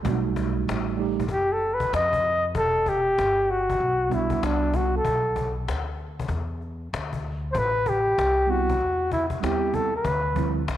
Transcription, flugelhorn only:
1.32 G4
1.53 A4
1.74 B4
1.94 D#5
2.57 A4
2.89 G4
3.51 F#4
4.14 E4
4.45 D4
4.76 F#4
4.97 A4
7.52 C5
7.58 B4
7.89 G4
8.51 F#4
9.13 E4
9.44 G4
9.75 A4
9.96 B4

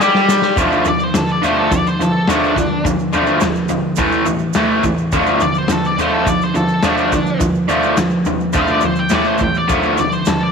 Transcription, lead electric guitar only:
0.88 D5
1.03 C5
1.17 A4
1.32 D5
1.44 C5
1.60 A4
1.74 D5
1.88 C5
2.02 A4
2.29 D4
5.42 D5
5.58 C5
5.72 A4
5.86 D5
6.00 C5
6.13 A4
6.29 D5
6.44 C5
6.56 A4
6.85 D4
8.57 F5
8.71 D5
8.85 C5
8.99 G5
9.14 D5
9.27 C5
9.44 G5
9.57 D5
9.99 D5
10.13 C5
10.28 A4
10.43 D5

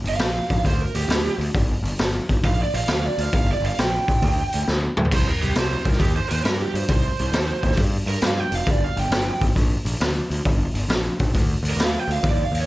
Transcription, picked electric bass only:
0.04 G1
0.19 A#1
0.50 A#1
0.64 D2
0.95 D2
1.08 D2
1.38 D2
1.54 G1
1.83 G1
1.99 G1
2.30 G1
2.43 A#1
2.74 A#1
2.88 D2
3.18 D2
3.33 G1
3.61 G1
3.79 A#1
4.08 A#1
4.22 D2
4.54 D2
4.68 D2
4.97 D2
5.12 C2
5.43 C2
5.56 C2
5.85 C2
6.00 D#2
6.31 D#2
6.44 G2
6.74 G2
6.89 C2
7.20 C2
7.32 D#2
7.63 D#2
7.77 G2
8.06 G2
8.23 G2
8.52 F1
8.67 G1
8.96 G1
9.09 G1
9.41 G1
9.55 A#1
9.85 A#1
10.00 D2
10.30 D2
10.46 G1
10.74 G1
10.88 A#1
11.20 A#1
11.34 D2
11.63 D2
11.76 D2
12.08 D2
12.23 D#2
12.52 D#2

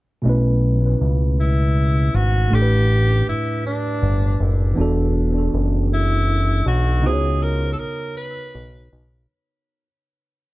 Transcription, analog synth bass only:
0.25 B1
1.01 C#2
2.14 G#1
2.52 A1
3.27 G1
4.02 G1
4.40 F#1
4.78 E1
5.53 F#1
6.66 B1
7.04 C#2
7.79 B1
8.55 B1
8.92 B1

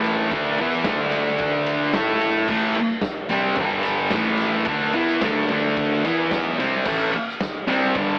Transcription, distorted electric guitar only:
Already playing: A2 E3 A3
0.32 D3 A3 D4
0.59 E3 B3 E4
0.87 D3 A3 D4
1.94 A3 E4 A4
2.49 A2 E3 A3
2.77 muted distorted electric guitar stroke
3.30 C3 G3 C4
3.57 G2 D3 G3
4.13 A2 E3 A3
4.67 D3 A3 D4
4.94 E3 B3 E4
5.23 D3 A3 D4
5.51 D3 A3 D4
6.05 E3 B3 E4
6.60 C3 G3 C4
6.86 A2 E3 A3
7.13 muted distorted electric guitar stroke
7.67 C3 G3 C4
7.95 G2 D3 G3

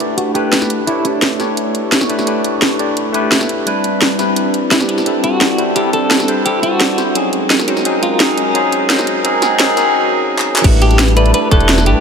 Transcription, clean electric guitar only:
Already playing: E4
0.17 F#4
0.35 G4
0.87 E4
1.05 D4
4.71 E4
4.89 G4
5.24 F#4
5.76 G4
5.93 A4
6.46 G4
6.63 F#4
7.50 D#4
7.68 F#4
8.03 F4
8.20 D#4
8.38 C#4
10.65 F#4
10.82 G4
11.17 B4
11.34 B4
11.52 A4
11.87 G4

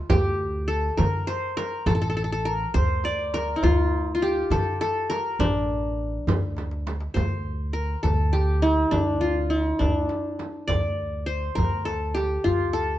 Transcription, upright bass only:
0.10 D2
0.98 D3
1.86 A1
2.74 D2
3.63 D2
4.50 D3
5.39 A1
6.27 D2
7.16 D2
8.04 D2
8.92 D2
9.80 D2
10.70 D2
11.57 D2
12.46 D2

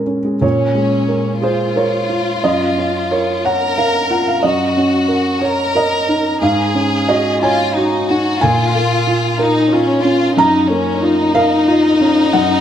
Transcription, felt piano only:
Already playing: A#2 G#3 C#4 A#4
0.07 C#4
0.24 G#3
0.41 A#2 C#5
0.75 G#3
1.09 A#4
1.42 G#4 C5
1.76 A#4 C#5
2.09 F4
2.44 F#2 D#5
2.77 C#4
3.11 A#4 C#5
3.45 C#5 F#5
3.78 A#4 F5
4.10 F4 F#5
4.28 F5
4.43 F#2 D#5
4.77 C#4
5.08 A#4
5.42 C#5
5.75 A#4 D#5
6.09 D#4
6.42 G#2 F5
6.75 C#4
7.09 F#4 D#5
7.43 C#5 G#5
7.77 F#4
8.10 D#4
8.41 A#2 G#5
8.75 A#3
9.07 F4
9.39 A#4
9.72 F4
10.05 C#4
10.37 F#2 A#5
10.70 A#3
11.03 F4
11.35 A#4 F5
11.68 F4
12.01 C#4
12.33 F#2 F#5

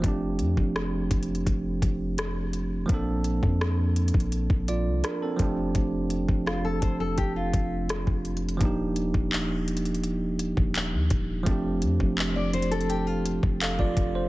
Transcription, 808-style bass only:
0.04 F1
0.40 F2
0.57 F1
1.11 F1
1.47 F1
1.82 F1
2.89 A#1
3.43 F2
4.14 A#1
4.50 A#1
4.86 C2
5.39 F1
5.75 F1
6.29 F1
6.82 F1
7.18 F1
7.54 F1
8.07 F1
8.61 D#1
9.14 D#1
10.57 D#1
10.93 D#2
11.11 D#1
11.47 F1
11.83 F2
12.00 F1
13.43 F1
13.79 F1

